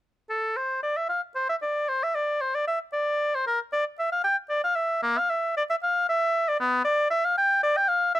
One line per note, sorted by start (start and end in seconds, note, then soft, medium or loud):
0.30 0.58 A4 medium
0.56 0.82 C5 medium
0.83 0.98 D5 medium
0.97 1.08 E5 medium
1.09 1.21 F5 medium
1.35 1.48 C5 medium
1.49 1.55 E5 medium
1.61 1.90 D5 soft
1.88 2.05 C5 medium
2.03 2.16 E5 medium
2.15 2.42 D5 soft
2.41 2.56 C5 medium
2.55 2.67 D5 medium
2.67 2.80 E5 medium
2.93 3.36 D5 medium
3.35 3.46 C5 medium
3.47 3.59 A#4 medium
3.72 3.84 D5 medium
3.99 4.11 E5 medium
4.12 4.23 F5 medium
4.24 4.36 G5 medium
4.49 4.63 D5 medium
4.64 4.77 F5 medium
4.75 5.02 E5 medium
5.02 5.19 A#3 medium
5.18 5.31 F5 medium
5.30 5.56 E5 medium
5.57 5.63 D5 medium
5.70 5.76 E5 medium
5.83 6.08 F5 medium
6.09 6.50 E5 medium
6.48 6.59 D5 medium
6.60 6.84 B3 medium
6.84 7.10 D5 medium
7.10 7.26 E5 medium
7.25 7.37 F5 medium
7.37 7.62 G5 medium
7.63 7.78 D5 medium
7.77 7.90 G5 medium
7.88 8.14 F5 medium
8.14 8.20 E5 medium